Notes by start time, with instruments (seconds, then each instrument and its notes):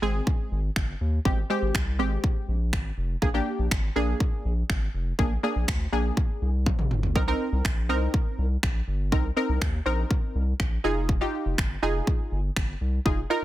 0.02 analog synth bass G#1, synth stab G#3 C4 G#4
0.27 kick
0.52 analog synth bass G#1
0.76 analog synth bass G1, finger snap, kick
1.01 analog synth bass D#2
1.25 analog synth bass G#1, synth stab G#3 C4 G4, kick
1.50 synth stab G#3 C4 G4
1.62 analog synth bass G#1
1.75 analog synth bass C2, finger snap, kick
1.99 analog synth bass G#1, synth stab G#3 C4 G4
2.24 kick
2.48 analog synth bass A#1
2.73 analog synth bass G#1, finger snap, kick
2.97 analog synth bass F1
3.22 analog synth bass A#1, synth stab A#3 D4 G#4, kick
3.34 synth stab A#3 D4 G4
3.59 analog synth bass A#1
3.71 analog synth bass G#1, finger snap, kick
3.96 analog synth bass A#1, synth stab A#3 D4 G#4
4.20 kick
4.45 analog synth bass A#1
4.70 analog synth bass G#1, finger snap, kick
4.94 analog synth bass F1
5.19 analog synth bass A#1, synth stab A#3 D4 G#4, kick
5.43 synth stab A#3 D4 G#4
5.56 analog synth bass A#1
5.68 analog synth bass D2, finger snap, kick
5.92 analog synth bass A#1, synth stab A#3 D4 G#4
6.17 kick
6.42 analog synth bass C2
6.66 kick, high tom
6.79 analog synth bass A#1, mid tom
6.91 analog synth bass G1, mid tom
7.03 floor tom
7.15 analog synth bass C2, synth stab C4 D#4 A#4, kick
7.28 synth stab C4 D#4 A#4
7.52 analog synth bass C2
7.65 analog synth bass A#1, finger snap, kick
7.89 analog synth bass C2, synth stab C4 D#4 A#4
8.14 kick
8.38 analog synth bass C2
8.63 analog synth bass A#1, finger snap, kick
8.88 analog synth bass G1
9.12 analog synth bass C2, synth stab C4 D#4 A#4, kick
9.37 synth stab C4 D#4 A#4
9.49 analog synth bass C2
9.62 analog synth bass D#2, finger snap, kick
9.86 analog synth bass A#1, synth stab C4 D#4 A#4
10.11 kick
10.35 analog synth bass C2
10.60 analog synth bass A#1, finger snap, kick
10.84 analog synth bass F1, synth stab D#4 F4 G#4
11.09 kick
11.21 synth stab D#4 F4 G4
11.46 analog synth bass F1
11.58 analog synth bass G1, finger snap, kick
11.82 analog synth bass F1, synth stab D#4 F4 G#4
12.07 kick
12.32 analog synth bass G1
12.56 analog synth bass G1, finger snap, kick
12.81 analog synth bass C2
13.05 analog synth bass F1, synth stab D#4 F4 G#4, kick
13.30 synth stab D#4 F4 A#4